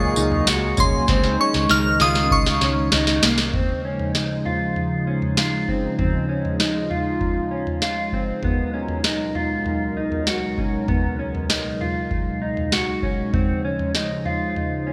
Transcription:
Already playing: fingered electric bass C#2, analog synth pad A#2 F#3 G#3 A#3 G#4, clean electric guitar F4, celesta D#5, synth bell C#6
0.16 fingered electric bass C#2, clean electric guitar D#4, tambourine
0.32 floor tom
0.47 fingered electric bass C#2, clean electric guitar F#4, snare, tambourine
0.77 fingered electric bass C2, clean electric guitar C#4, synth bell C6, kick, floor tom, tambourine
1.08 fingered electric bass C#2, analog synth pad D#3 D#4, clean electric guitar C4, kick, snare
1.24 snare
1.40 clean electric guitar C#4, synth bell C#6
1.54 fingered electric bass C#2, snare
1.69 fingered electric bass C#2, clean electric guitar D#4, synth bell F6, snare
2.00 fingered electric bass C#2, clean electric guitar F4, synth bell D#6, snare
2.15 snare
2.23 celesta C#4
2.28 fingered electric bass C#2, celesta F5, kick
2.32 synth bell C#6
2.46 snare
2.61 fingered electric bass C#2, clean electric guitar C#4, snare
2.92 fingered electric bass C#2, clean electric guitar D#4, snare
3.07 snare
3.23 fingered electric bass C2, clean electric guitar A#3, snare
3.38 snare
3.53 analog synth pad C#3 F3 G#3 D#4 C5, clean electric guitar C4, kick, floor tom
3.85 clean electric guitar C#4
3.99 floor tom
4.15 clean electric guitar D#4, snare
4.45 clean electric guitar F4, floor tom
4.76 floor tom
5.07 clean electric guitar C#4
5.22 floor tom
5.37 clean electric guitar F4, snare
5.68 clean electric guitar C4, kick
5.99 clean electric guitar C4, analog synth pad F4, kick, floor tom
6.29 clean electric guitar C#4
6.45 floor tom
6.60 clean electric guitar D#4, snare
6.90 clean electric guitar F4, floor tom
7.21 kick, floor tom
7.51 clean electric guitar C#4
7.67 floor tom
7.82 clean electric guitar F4, snare
8.13 clean electric guitar C4, kick
8.43 analog synth pad C#2 B2 F#3 G#3 D#4 A#4, clean electric guitar B3, kick, floor tom
8.74 clean electric guitar C#4
8.88 floor tom
9.04 clean electric guitar D#4, snare
9.35 clean electric guitar F4, floor tom
9.66 floor tom
9.97 clean electric guitar D#4
10.12 floor tom
10.27 clean electric guitar F#4, snare
10.58 clean electric guitar C#4, kick
10.88 clean electric guitar B3, kick, floor tom
11.19 clean electric guitar C#4
11.35 floor tom
11.49 clean electric guitar D#4, snare
11.81 clean electric guitar F4, floor tom
12.11 kick, floor tom
12.42 clean electric guitar D#4
12.57 floor tom
12.72 clean electric guitar F#4, snare
13.03 clean electric guitar C#4, kick
13.33 analog synth pad C#3 F3 C5, clean electric guitar C4, kick, floor tom
13.65 clean electric guitar C#4
13.79 floor tom
13.95 clean electric guitar D#4, snare
14.25 clean electric guitar F4, floor tom
14.56 floor tom
14.87 clean electric guitar C#4

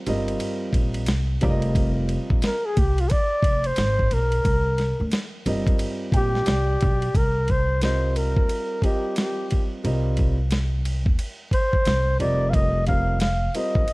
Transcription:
0.06 upright bass G1, grand piano G3 C4 F4 A#4 D#5, ride
0.28 ride
0.40 ride
0.73 upright bass A#1, kick, ride
0.94 ride
1.06 upright bass C2, snare, hi-hat pedal, ride
1.41 upright bass F1, grand piano G3 C4 F4 A#4 D5, kick, ride
1.49 grand piano D#5
1.62 ride
1.75 kick, ride
2.09 ride
2.30 upright bass A#1, kick
2.42 flugelhorn A#4, snare, hi-hat pedal, ride
2.66 flugelhorn G#4
2.77 upright bass C2, flugelhorn G4, kick, ride
2.98 flugelhorn F4, ride
3.10 flugelhorn D5, kick, ride
3.43 upright bass F1, kick, ride
3.64 flugelhorn C5, ride
3.76 upright bass G#1, snare, hi-hat pedal, ride
3.99 kick
4.11 upright bass B1, flugelhorn A#4, ride
4.32 ride
4.45 upright bass C2, kick, ride
4.78 snare, ride
5.00 upright bass D2
5.12 snare, hi-hat pedal, ride
5.46 upright bass G1, grand piano G3 C4 F4 A#4 D#5, ride
5.67 kick, ride
5.79 ride
6.12 upright bass A#1, grand piano G5, kick, ride
6.16 flugelhorn G4
6.35 snare
6.46 upright bass C2, grand piano D5, snare, hi-hat pedal, ride
6.81 upright bass B1, kick, ride
7.02 ride
7.14 upright bass C2, flugelhorn A#4, kick, ride
7.48 flugelhorn C5, kick, ride
7.81 grand piano G3 C4 F4 A#4 D#5, flugelhorn C5, snare, hi-hat pedal, ride
8.16 flugelhorn A#4, ride
8.37 upright bass D#2, kick
8.49 ride
8.82 grand piano G3 C4 F4 A#4 D#5, flugelhorn G4, kick, ride
9.16 flugelhorn G4, snare, hi-hat pedal, ride
9.51 kick, ride
9.84 upright bass C2, grand piano G3 C4 F4 A#4 D#5, ride
10.17 kick, ride
10.51 snare, hi-hat pedal, ride
10.85 ride
11.06 upright bass D#2, kick
11.19 ride
11.51 flugelhorn C5, kick, ride
11.73 kick
11.85 upright bass C2, snare, hi-hat pedal, ride
12.20 upright bass F1, grand piano G3 C4 F4 A#4 D#5, flugelhorn D5, ride
12.50 flugelhorn F5, kick
12.54 flugelhorn D#5, ride
12.87 grand piano G3 C4 F4 A#4 F5, flugelhorn F5, kick, ride
13.20 flugelhorn F5, snare, hi-hat pedal, ride
13.55 grand piano G3 C4 F4 A#4 C5, flugelhorn D#5, ride
13.75 upright bass G1, kick
13.88 ride

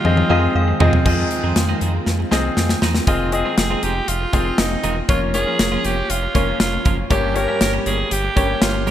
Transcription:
Already playing: alto saxophone F4
0.04 analog synth bass F2, analog synth pad D#3 G#3 C4 F4, grand piano C4 F4 G#4 D#5, muted clean electric guitar stroke, high tom
0.17 muted clean electric guitar stroke, high tom
0.30 analog synth bass F2, clean electric guitar G#3 C4 D#4 G#4, grand piano C4 F4 G#4 D#5, synth bell F5
0.42 muted clean electric guitar stroke
0.55 analog synth bass F2, synth bell F5
0.68 muted clean electric guitar stroke
0.80 analog synth bass F2, clean electric guitar G#3 C4 D#4 G#4, grand piano C4 F4 G#4 D#5, synth bell D#5, floor tom
0.93 muted clean electric guitar stroke, floor tom
1.05 analog synth bass F2, analog synth pad D#3 G#3 C4 F4, clean electric guitar F3 C4 D#4 G#4, grand piano C4 F4 G#4 D#5, kick, crash
1.31 muted clean electric guitar stroke, closed hi-hat
1.43 analog synth bass F2, clean electric guitar F3 C4 D#4 G#4
1.56 analog synth bass F2, muted clean electric guitar stroke, snare, closed hi-hat
1.69 clean electric guitar F3 C4 D#4 G#4
1.81 analog synth bass F2, clean electric guitar F3 C4 D#4 G#4, closed hi-hat
1.94 muted clean electric guitar stroke
2.06 analog synth bass F2, muted clean electric guitar stroke, snare
2.19 muted clean electric guitar stroke
2.31 analog synth bass C2, clean electric guitar F3 C4 D#4 G#4, grand piano C4 F4 G#4 D#5, snare
2.44 muted clean electric guitar stroke
2.57 analog synth bass F2, snare
2.69 muted clean electric guitar stroke, snare
2.82 analog synth bass E2, clean electric guitar F3 C4 D#4 G#4, snare
2.95 muted clean electric guitar stroke, snare
3.07 analog synth bass F1, clean electric guitar D#3 G#3 C4 F4, grand piano C4 F4 G#4 D#5, alto saxophone F4, kick, closed hi-hat
3.32 grand piano C4 F4 G#4 D#5, alto saxophone G#4, muted clean electric guitar stroke, closed hi-hat
3.45 clean electric guitar D#3 G#3 C4 F4
3.58 analog synth bass F1, alto saxophone G#4, muted clean electric guitar stroke, snare, closed hi-hat
3.70 clean electric guitar D#3 G#3 C4 F4
3.83 analog synth bass F1, clean electric guitar D#3 G#3 C4 F4, alto saxophone G4, closed hi-hat
3.96 muted clean electric guitar stroke
4.08 analog synth bass F1, alto saxophone F4, muted clean electric guitar stroke, closed hi-hat
4.21 muted clean electric guitar stroke
4.33 analog synth bass F1, clean electric guitar D#3 G#3 C4 F4, grand piano C4 F4 G#4 F5, kick, closed hi-hat
4.46 muted clean electric guitar stroke
4.58 analog synth bass F1, alto saxophone D#4, snare, closed hi-hat
4.71 muted clean electric guitar stroke
4.83 analog synth bass E1, clean electric guitar D#3 G#3 C4 F4, closed hi-hat
4.96 muted clean electric guitar stroke
5.08 analog synth bass F1, clean electric guitar F3 A#3 C#4 F4, grand piano A#3 C#4 F4 C#5, alto saxophone F4, kick, closed hi-hat
5.34 grand piano A#3 C#4 F4 C#5, alto saxophone G#4, muted clean electric guitar stroke, closed hi-hat
5.47 clean electric guitar F3 A#3 C#4 F4
5.59 analog synth bass F1, snare, closed hi-hat
5.72 clean electric guitar F3 A#3 C#4 F4
5.84 analog synth bass F1, clean electric guitar F3 A#3 C#4 F4, alto saxophone G4, closed hi-hat
5.97 muted clean electric guitar stroke
6.10 analog synth bass F1, alto saxophone F4, muted clean electric guitar stroke, closed hi-hat
6.22 muted clean electric guitar stroke
6.34 analog synth bass F1, clean electric guitar F3 A#3 C#4 F4, grand piano A#3 C#4 F4 C#5, kick, closed hi-hat
6.48 clean electric guitar F3 A#3 C#4 F4
6.60 analog synth bass F1, alto saxophone F4, snare, closed hi-hat
6.73 muted clean electric guitar stroke
6.85 analog synth bass F#1, clean electric guitar F3 A#3 C#4 F4, kick, closed hi-hat
6.98 muted clean electric guitar stroke
7.10 analog synth bass G1, grand piano G2 A#3 C#4 G4 C#5, clean electric guitar G3 A#3 C#4 G4, alto saxophone G4, kick, closed hi-hat
7.35 grand piano A#3 C#4 G4 C#5, alto saxophone A#4, muted clean electric guitar stroke, closed hi-hat
7.48 clean electric guitar G3 A#3 C#4 G4
7.61 analog synth bass G1, alto saxophone A#4, muted clean electric guitar stroke, snare, closed hi-hat
7.73 clean electric guitar G3 A#3 C#4 G4
7.86 analog synth bass G1, clean electric guitar G3 A#3 C#4 G4, alto saxophone G#4, closed hi-hat
7.99 muted clean electric guitar stroke
8.11 analog synth bass G1, alto saxophone G4, muted clean electric guitar stroke, closed hi-hat
8.24 muted clean electric guitar stroke
8.36 analog synth bass G1, clean electric guitar G3 A#3 C#4 G4, grand piano A#3 C#4 G4 C#5, kick, closed hi-hat
8.49 muted clean electric guitar stroke
8.62 analog synth bass G1, alto saxophone F4, snare, closed hi-hat
8.74 muted clean electric guitar stroke
8.87 analog synth bass B1, clean electric guitar G3 A#3 C#4 G4, open hi-hat

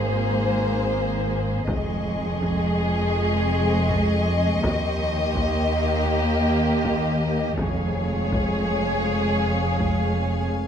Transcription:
Already playing: double bass section G#1, synth drone G#1, cello section G#2, viola section A#3, violin section G#4 C5
1.68 double bass section F1, synth drone F2, cello section F2, viola section G#3, violin section G#4 D#5 C6 C#6, taiko
2.42 taiko
3.90 taiko
4.62 cello section D#2, synth drone D#2, double bass section D#2, viola section A#3, violin section G4, taiko
5.36 taiko
6.84 taiko
7.58 double bass section F1, cello section F2, synth drone F2, viola section G#3, violin section G#4 C#5 F5 G#5, taiko
8.32 taiko
9.80 taiko
10.55 synth drone G#1

